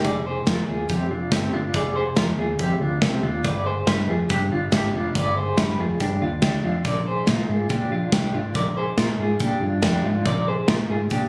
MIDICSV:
0, 0, Header, 1, 4, 480
1, 0, Start_track
1, 0, Tempo, 425834
1, 48, Time_signature, 4, 2, 24, 8
1, 12722, End_track
2, 0, Start_track
2, 0, Title_t, "Clean electric guitar"
2, 0, Program_c, 0, 27
2, 55, Note_on_c, 0, 74, 84
2, 62, Note_on_c, 0, 68, 67
2, 287, Note_off_c, 0, 68, 0
2, 289, Note_off_c, 0, 74, 0
2, 293, Note_on_c, 0, 72, 61
2, 301, Note_on_c, 0, 68, 57
2, 528, Note_off_c, 0, 68, 0
2, 530, Note_off_c, 0, 72, 0
2, 533, Note_on_c, 0, 70, 75
2, 543, Note_on_c, 0, 65, 59
2, 769, Note_off_c, 0, 70, 0
2, 771, Note_off_c, 0, 65, 0
2, 776, Note_on_c, 0, 68, 64
2, 784, Note_on_c, 0, 65, 43
2, 1011, Note_off_c, 0, 68, 0
2, 1012, Note_off_c, 0, 65, 0
2, 1017, Note_on_c, 0, 67, 85
2, 1027, Note_on_c, 0, 60, 62
2, 1245, Note_off_c, 0, 67, 0
2, 1249, Note_on_c, 0, 65, 60
2, 1254, Note_off_c, 0, 60, 0
2, 1259, Note_on_c, 0, 62, 53
2, 1487, Note_off_c, 0, 65, 0
2, 1492, Note_off_c, 0, 62, 0
2, 1497, Note_on_c, 0, 67, 79
2, 1504, Note_on_c, 0, 60, 62
2, 1728, Note_off_c, 0, 67, 0
2, 1733, Note_on_c, 0, 65, 72
2, 1734, Note_off_c, 0, 60, 0
2, 1740, Note_on_c, 0, 62, 59
2, 1968, Note_off_c, 0, 65, 0
2, 1971, Note_on_c, 0, 74, 84
2, 1972, Note_off_c, 0, 62, 0
2, 1980, Note_on_c, 0, 68, 70
2, 2203, Note_off_c, 0, 68, 0
2, 2203, Note_off_c, 0, 74, 0
2, 2207, Note_on_c, 0, 72, 70
2, 2217, Note_on_c, 0, 68, 54
2, 2445, Note_off_c, 0, 72, 0
2, 2446, Note_off_c, 0, 68, 0
2, 2450, Note_on_c, 0, 70, 69
2, 2459, Note_on_c, 0, 65, 56
2, 2678, Note_off_c, 0, 65, 0
2, 2680, Note_off_c, 0, 70, 0
2, 2684, Note_on_c, 0, 68, 61
2, 2692, Note_on_c, 0, 65, 47
2, 2921, Note_off_c, 0, 65, 0
2, 2924, Note_off_c, 0, 68, 0
2, 2925, Note_on_c, 0, 67, 90
2, 2937, Note_on_c, 0, 60, 63
2, 3164, Note_off_c, 0, 67, 0
2, 3170, Note_off_c, 0, 60, 0
2, 3171, Note_on_c, 0, 65, 66
2, 3176, Note_on_c, 0, 62, 52
2, 3401, Note_off_c, 0, 65, 0
2, 3405, Note_on_c, 0, 67, 76
2, 3407, Note_off_c, 0, 62, 0
2, 3412, Note_on_c, 0, 60, 65
2, 3640, Note_off_c, 0, 67, 0
2, 3644, Note_on_c, 0, 65, 75
2, 3647, Note_off_c, 0, 60, 0
2, 3652, Note_on_c, 0, 62, 53
2, 3881, Note_on_c, 0, 74, 86
2, 3883, Note_off_c, 0, 65, 0
2, 3887, Note_off_c, 0, 62, 0
2, 3891, Note_on_c, 0, 71, 67
2, 4122, Note_off_c, 0, 74, 0
2, 4126, Note_on_c, 0, 72, 72
2, 4127, Note_off_c, 0, 71, 0
2, 4133, Note_on_c, 0, 68, 47
2, 4361, Note_off_c, 0, 68, 0
2, 4364, Note_off_c, 0, 72, 0
2, 4365, Note_on_c, 0, 71, 70
2, 4376, Note_on_c, 0, 67, 56
2, 4604, Note_off_c, 0, 71, 0
2, 4609, Note_off_c, 0, 67, 0
2, 4613, Note_on_c, 0, 68, 54
2, 4623, Note_on_c, 0, 65, 42
2, 4847, Note_off_c, 0, 68, 0
2, 4849, Note_off_c, 0, 65, 0
2, 4853, Note_on_c, 0, 67, 87
2, 4860, Note_on_c, 0, 62, 59
2, 5087, Note_off_c, 0, 67, 0
2, 5091, Note_off_c, 0, 62, 0
2, 5095, Note_on_c, 0, 65, 70
2, 5105, Note_on_c, 0, 62, 48
2, 5327, Note_off_c, 0, 62, 0
2, 5328, Note_off_c, 0, 65, 0
2, 5334, Note_on_c, 0, 67, 85
2, 5341, Note_on_c, 0, 62, 63
2, 5567, Note_off_c, 0, 67, 0
2, 5571, Note_off_c, 0, 62, 0
2, 5578, Note_on_c, 0, 65, 75
2, 5587, Note_on_c, 0, 62, 58
2, 5809, Note_off_c, 0, 65, 0
2, 5814, Note_off_c, 0, 62, 0
2, 5816, Note_on_c, 0, 74, 95
2, 5828, Note_on_c, 0, 71, 65
2, 6049, Note_off_c, 0, 74, 0
2, 6054, Note_off_c, 0, 71, 0
2, 6058, Note_on_c, 0, 72, 70
2, 6066, Note_on_c, 0, 68, 52
2, 6288, Note_off_c, 0, 72, 0
2, 6293, Note_off_c, 0, 68, 0
2, 6293, Note_on_c, 0, 71, 78
2, 6302, Note_on_c, 0, 67, 56
2, 6527, Note_off_c, 0, 71, 0
2, 6530, Note_off_c, 0, 67, 0
2, 6535, Note_on_c, 0, 68, 58
2, 6544, Note_on_c, 0, 65, 47
2, 6764, Note_off_c, 0, 68, 0
2, 6768, Note_on_c, 0, 67, 77
2, 6772, Note_off_c, 0, 65, 0
2, 6777, Note_on_c, 0, 62, 60
2, 7005, Note_off_c, 0, 67, 0
2, 7009, Note_off_c, 0, 62, 0
2, 7011, Note_on_c, 0, 65, 58
2, 7021, Note_on_c, 0, 62, 49
2, 7239, Note_off_c, 0, 65, 0
2, 7241, Note_off_c, 0, 62, 0
2, 7244, Note_on_c, 0, 67, 78
2, 7254, Note_on_c, 0, 62, 69
2, 7476, Note_off_c, 0, 62, 0
2, 7476, Note_off_c, 0, 67, 0
2, 7480, Note_on_c, 0, 65, 75
2, 7489, Note_on_c, 0, 62, 56
2, 7720, Note_off_c, 0, 65, 0
2, 7722, Note_on_c, 0, 74, 78
2, 7725, Note_off_c, 0, 62, 0
2, 7731, Note_on_c, 0, 70, 58
2, 7959, Note_off_c, 0, 74, 0
2, 7963, Note_on_c, 0, 72, 73
2, 7966, Note_off_c, 0, 70, 0
2, 7970, Note_on_c, 0, 68, 51
2, 8202, Note_off_c, 0, 68, 0
2, 8202, Note_off_c, 0, 72, 0
2, 8207, Note_on_c, 0, 70, 76
2, 8216, Note_on_c, 0, 65, 57
2, 8442, Note_off_c, 0, 70, 0
2, 8443, Note_off_c, 0, 65, 0
2, 8446, Note_on_c, 0, 68, 56
2, 8457, Note_on_c, 0, 65, 50
2, 8675, Note_off_c, 0, 68, 0
2, 8680, Note_on_c, 0, 67, 75
2, 8687, Note_off_c, 0, 65, 0
2, 8691, Note_on_c, 0, 62, 65
2, 8920, Note_off_c, 0, 62, 0
2, 8920, Note_off_c, 0, 67, 0
2, 8927, Note_on_c, 0, 65, 72
2, 8934, Note_on_c, 0, 62, 55
2, 9158, Note_off_c, 0, 62, 0
2, 9162, Note_off_c, 0, 65, 0
2, 9166, Note_on_c, 0, 67, 89
2, 9172, Note_on_c, 0, 62, 63
2, 9395, Note_off_c, 0, 62, 0
2, 9396, Note_off_c, 0, 67, 0
2, 9400, Note_on_c, 0, 65, 74
2, 9409, Note_on_c, 0, 62, 54
2, 9641, Note_off_c, 0, 65, 0
2, 9645, Note_off_c, 0, 62, 0
2, 9645, Note_on_c, 0, 74, 81
2, 9657, Note_on_c, 0, 70, 69
2, 9881, Note_off_c, 0, 74, 0
2, 9886, Note_on_c, 0, 72, 68
2, 9890, Note_off_c, 0, 70, 0
2, 9896, Note_on_c, 0, 68, 54
2, 10121, Note_off_c, 0, 68, 0
2, 10124, Note_off_c, 0, 72, 0
2, 10125, Note_on_c, 0, 70, 72
2, 10133, Note_on_c, 0, 65, 57
2, 10356, Note_off_c, 0, 65, 0
2, 10360, Note_off_c, 0, 70, 0
2, 10365, Note_on_c, 0, 68, 67
2, 10370, Note_on_c, 0, 65, 45
2, 10603, Note_off_c, 0, 68, 0
2, 10607, Note_off_c, 0, 65, 0
2, 10607, Note_on_c, 0, 67, 81
2, 10617, Note_on_c, 0, 62, 68
2, 10846, Note_off_c, 0, 62, 0
2, 10846, Note_off_c, 0, 67, 0
2, 10851, Note_on_c, 0, 65, 61
2, 10859, Note_on_c, 0, 62, 49
2, 11081, Note_off_c, 0, 62, 0
2, 11082, Note_off_c, 0, 65, 0
2, 11086, Note_on_c, 0, 67, 74
2, 11094, Note_on_c, 0, 62, 63
2, 11323, Note_off_c, 0, 62, 0
2, 11326, Note_off_c, 0, 67, 0
2, 11330, Note_on_c, 0, 65, 72
2, 11337, Note_on_c, 0, 62, 56
2, 11568, Note_off_c, 0, 65, 0
2, 11572, Note_off_c, 0, 62, 0
2, 11574, Note_on_c, 0, 74, 87
2, 11585, Note_on_c, 0, 70, 69
2, 11810, Note_off_c, 0, 74, 0
2, 11815, Note_on_c, 0, 72, 65
2, 11816, Note_off_c, 0, 70, 0
2, 11823, Note_on_c, 0, 68, 54
2, 12046, Note_off_c, 0, 68, 0
2, 12050, Note_on_c, 0, 70, 79
2, 12051, Note_off_c, 0, 72, 0
2, 12057, Note_on_c, 0, 65, 60
2, 12286, Note_off_c, 0, 70, 0
2, 12289, Note_off_c, 0, 65, 0
2, 12290, Note_on_c, 0, 68, 65
2, 12302, Note_on_c, 0, 65, 47
2, 12527, Note_off_c, 0, 68, 0
2, 12531, Note_on_c, 0, 67, 84
2, 12536, Note_off_c, 0, 65, 0
2, 12544, Note_on_c, 0, 62, 65
2, 12722, Note_off_c, 0, 62, 0
2, 12722, Note_off_c, 0, 67, 0
2, 12722, End_track
3, 0, Start_track
3, 0, Title_t, "Fingered electric bass"
3, 0, Program_c, 1, 33
3, 50, Note_on_c, 1, 29, 90
3, 456, Note_off_c, 1, 29, 0
3, 533, Note_on_c, 1, 41, 85
3, 734, Note_off_c, 1, 41, 0
3, 765, Note_on_c, 1, 39, 76
3, 969, Note_off_c, 1, 39, 0
3, 1011, Note_on_c, 1, 41, 83
3, 1212, Note_off_c, 1, 41, 0
3, 1241, Note_on_c, 1, 29, 71
3, 1447, Note_off_c, 1, 29, 0
3, 1483, Note_on_c, 1, 31, 87
3, 1688, Note_off_c, 1, 31, 0
3, 1721, Note_on_c, 1, 31, 76
3, 1926, Note_off_c, 1, 31, 0
3, 1963, Note_on_c, 1, 29, 91
3, 2371, Note_off_c, 1, 29, 0
3, 2441, Note_on_c, 1, 41, 80
3, 2646, Note_off_c, 1, 41, 0
3, 2673, Note_on_c, 1, 39, 85
3, 2881, Note_off_c, 1, 39, 0
3, 2920, Note_on_c, 1, 41, 93
3, 3126, Note_off_c, 1, 41, 0
3, 3153, Note_on_c, 1, 38, 77
3, 3361, Note_off_c, 1, 38, 0
3, 3398, Note_on_c, 1, 36, 82
3, 3604, Note_off_c, 1, 36, 0
3, 3631, Note_on_c, 1, 39, 79
3, 3840, Note_off_c, 1, 39, 0
3, 3882, Note_on_c, 1, 31, 84
3, 4290, Note_off_c, 1, 31, 0
3, 4367, Note_on_c, 1, 43, 89
3, 4569, Note_off_c, 1, 43, 0
3, 4603, Note_on_c, 1, 41, 74
3, 4807, Note_off_c, 1, 41, 0
3, 4849, Note_on_c, 1, 43, 100
3, 5050, Note_off_c, 1, 43, 0
3, 5086, Note_on_c, 1, 31, 80
3, 5288, Note_off_c, 1, 31, 0
3, 5328, Note_on_c, 1, 32, 69
3, 5529, Note_off_c, 1, 32, 0
3, 5567, Note_on_c, 1, 29, 69
3, 5768, Note_off_c, 1, 29, 0
3, 5807, Note_on_c, 1, 31, 86
3, 6212, Note_off_c, 1, 31, 0
3, 6285, Note_on_c, 1, 43, 86
3, 6487, Note_off_c, 1, 43, 0
3, 6524, Note_on_c, 1, 41, 73
3, 6727, Note_off_c, 1, 41, 0
3, 6766, Note_on_c, 1, 43, 90
3, 6968, Note_off_c, 1, 43, 0
3, 7007, Note_on_c, 1, 39, 83
3, 7208, Note_off_c, 1, 39, 0
3, 7243, Note_on_c, 1, 38, 76
3, 7446, Note_off_c, 1, 38, 0
3, 7479, Note_on_c, 1, 41, 74
3, 7684, Note_off_c, 1, 41, 0
3, 7718, Note_on_c, 1, 34, 94
3, 8127, Note_off_c, 1, 34, 0
3, 8198, Note_on_c, 1, 46, 92
3, 8403, Note_off_c, 1, 46, 0
3, 8432, Note_on_c, 1, 44, 86
3, 8640, Note_off_c, 1, 44, 0
3, 8680, Note_on_c, 1, 46, 88
3, 8884, Note_off_c, 1, 46, 0
3, 8913, Note_on_c, 1, 34, 76
3, 9120, Note_off_c, 1, 34, 0
3, 9157, Note_on_c, 1, 36, 89
3, 9363, Note_off_c, 1, 36, 0
3, 9387, Note_on_c, 1, 32, 68
3, 9597, Note_off_c, 1, 32, 0
3, 9637, Note_on_c, 1, 34, 81
3, 10048, Note_off_c, 1, 34, 0
3, 10114, Note_on_c, 1, 46, 86
3, 10322, Note_off_c, 1, 46, 0
3, 10352, Note_on_c, 1, 44, 88
3, 10561, Note_off_c, 1, 44, 0
3, 10600, Note_on_c, 1, 46, 87
3, 10806, Note_off_c, 1, 46, 0
3, 10835, Note_on_c, 1, 43, 84
3, 11043, Note_off_c, 1, 43, 0
3, 11076, Note_on_c, 1, 41, 82
3, 11284, Note_off_c, 1, 41, 0
3, 11315, Note_on_c, 1, 44, 72
3, 11524, Note_off_c, 1, 44, 0
3, 11556, Note_on_c, 1, 34, 91
3, 11969, Note_off_c, 1, 34, 0
3, 12039, Note_on_c, 1, 46, 86
3, 12247, Note_off_c, 1, 46, 0
3, 12287, Note_on_c, 1, 44, 75
3, 12492, Note_off_c, 1, 44, 0
3, 12522, Note_on_c, 1, 46, 93
3, 12722, Note_off_c, 1, 46, 0
3, 12722, End_track
4, 0, Start_track
4, 0, Title_t, "Drums"
4, 52, Note_on_c, 9, 36, 101
4, 54, Note_on_c, 9, 42, 65
4, 165, Note_off_c, 9, 36, 0
4, 166, Note_off_c, 9, 42, 0
4, 527, Note_on_c, 9, 38, 113
4, 528, Note_on_c, 9, 42, 68
4, 532, Note_on_c, 9, 36, 108
4, 640, Note_off_c, 9, 38, 0
4, 641, Note_off_c, 9, 42, 0
4, 645, Note_off_c, 9, 36, 0
4, 1002, Note_on_c, 9, 42, 63
4, 1011, Note_on_c, 9, 36, 85
4, 1115, Note_off_c, 9, 42, 0
4, 1123, Note_off_c, 9, 36, 0
4, 1483, Note_on_c, 9, 42, 82
4, 1485, Note_on_c, 9, 38, 92
4, 1486, Note_on_c, 9, 36, 116
4, 1595, Note_off_c, 9, 42, 0
4, 1597, Note_off_c, 9, 38, 0
4, 1598, Note_off_c, 9, 36, 0
4, 1959, Note_on_c, 9, 42, 52
4, 1963, Note_on_c, 9, 36, 106
4, 2071, Note_off_c, 9, 42, 0
4, 2076, Note_off_c, 9, 36, 0
4, 2441, Note_on_c, 9, 38, 106
4, 2442, Note_on_c, 9, 42, 66
4, 2445, Note_on_c, 9, 36, 99
4, 2553, Note_off_c, 9, 38, 0
4, 2554, Note_off_c, 9, 42, 0
4, 2557, Note_off_c, 9, 36, 0
4, 2918, Note_on_c, 9, 42, 61
4, 2924, Note_on_c, 9, 36, 87
4, 3031, Note_off_c, 9, 42, 0
4, 3036, Note_off_c, 9, 36, 0
4, 3400, Note_on_c, 9, 42, 73
4, 3402, Note_on_c, 9, 36, 102
4, 3402, Note_on_c, 9, 38, 99
4, 3513, Note_off_c, 9, 42, 0
4, 3514, Note_off_c, 9, 36, 0
4, 3515, Note_off_c, 9, 38, 0
4, 3883, Note_on_c, 9, 36, 104
4, 3884, Note_on_c, 9, 42, 63
4, 3996, Note_off_c, 9, 36, 0
4, 3996, Note_off_c, 9, 42, 0
4, 4363, Note_on_c, 9, 38, 102
4, 4364, Note_on_c, 9, 42, 65
4, 4367, Note_on_c, 9, 36, 106
4, 4476, Note_off_c, 9, 38, 0
4, 4477, Note_off_c, 9, 42, 0
4, 4479, Note_off_c, 9, 36, 0
4, 4841, Note_on_c, 9, 42, 59
4, 4848, Note_on_c, 9, 36, 92
4, 4954, Note_off_c, 9, 42, 0
4, 4961, Note_off_c, 9, 36, 0
4, 5320, Note_on_c, 9, 42, 82
4, 5322, Note_on_c, 9, 38, 95
4, 5326, Note_on_c, 9, 36, 106
4, 5433, Note_off_c, 9, 42, 0
4, 5435, Note_off_c, 9, 38, 0
4, 5439, Note_off_c, 9, 36, 0
4, 5809, Note_on_c, 9, 36, 109
4, 5810, Note_on_c, 9, 42, 65
4, 5922, Note_off_c, 9, 36, 0
4, 5923, Note_off_c, 9, 42, 0
4, 6285, Note_on_c, 9, 38, 99
4, 6286, Note_on_c, 9, 42, 69
4, 6289, Note_on_c, 9, 36, 110
4, 6397, Note_off_c, 9, 38, 0
4, 6398, Note_off_c, 9, 42, 0
4, 6402, Note_off_c, 9, 36, 0
4, 6764, Note_on_c, 9, 42, 62
4, 6768, Note_on_c, 9, 36, 81
4, 6876, Note_off_c, 9, 42, 0
4, 6881, Note_off_c, 9, 36, 0
4, 7236, Note_on_c, 9, 42, 78
4, 7238, Note_on_c, 9, 38, 94
4, 7242, Note_on_c, 9, 36, 111
4, 7349, Note_off_c, 9, 42, 0
4, 7351, Note_off_c, 9, 38, 0
4, 7355, Note_off_c, 9, 36, 0
4, 7717, Note_on_c, 9, 42, 62
4, 7721, Note_on_c, 9, 36, 102
4, 7830, Note_off_c, 9, 42, 0
4, 7833, Note_off_c, 9, 36, 0
4, 8195, Note_on_c, 9, 38, 99
4, 8196, Note_on_c, 9, 42, 66
4, 8201, Note_on_c, 9, 36, 115
4, 8308, Note_off_c, 9, 38, 0
4, 8309, Note_off_c, 9, 42, 0
4, 8314, Note_off_c, 9, 36, 0
4, 8672, Note_on_c, 9, 42, 56
4, 8680, Note_on_c, 9, 36, 89
4, 8785, Note_off_c, 9, 42, 0
4, 8793, Note_off_c, 9, 36, 0
4, 9156, Note_on_c, 9, 42, 82
4, 9157, Note_on_c, 9, 36, 116
4, 9158, Note_on_c, 9, 38, 103
4, 9269, Note_off_c, 9, 42, 0
4, 9270, Note_off_c, 9, 36, 0
4, 9271, Note_off_c, 9, 38, 0
4, 9637, Note_on_c, 9, 42, 62
4, 9639, Note_on_c, 9, 36, 99
4, 9750, Note_off_c, 9, 42, 0
4, 9751, Note_off_c, 9, 36, 0
4, 10118, Note_on_c, 9, 38, 104
4, 10119, Note_on_c, 9, 36, 103
4, 10119, Note_on_c, 9, 42, 63
4, 10230, Note_off_c, 9, 38, 0
4, 10231, Note_off_c, 9, 42, 0
4, 10232, Note_off_c, 9, 36, 0
4, 10590, Note_on_c, 9, 42, 61
4, 10600, Note_on_c, 9, 36, 88
4, 10703, Note_off_c, 9, 42, 0
4, 10712, Note_off_c, 9, 36, 0
4, 11073, Note_on_c, 9, 42, 76
4, 11075, Note_on_c, 9, 38, 96
4, 11078, Note_on_c, 9, 36, 113
4, 11185, Note_off_c, 9, 42, 0
4, 11187, Note_off_c, 9, 38, 0
4, 11191, Note_off_c, 9, 36, 0
4, 11560, Note_on_c, 9, 36, 105
4, 11560, Note_on_c, 9, 42, 55
4, 11672, Note_off_c, 9, 42, 0
4, 11673, Note_off_c, 9, 36, 0
4, 12038, Note_on_c, 9, 38, 111
4, 12039, Note_on_c, 9, 42, 64
4, 12043, Note_on_c, 9, 36, 102
4, 12151, Note_off_c, 9, 38, 0
4, 12152, Note_off_c, 9, 42, 0
4, 12156, Note_off_c, 9, 36, 0
4, 12514, Note_on_c, 9, 42, 61
4, 12524, Note_on_c, 9, 36, 82
4, 12627, Note_off_c, 9, 42, 0
4, 12637, Note_off_c, 9, 36, 0
4, 12722, End_track
0, 0, End_of_file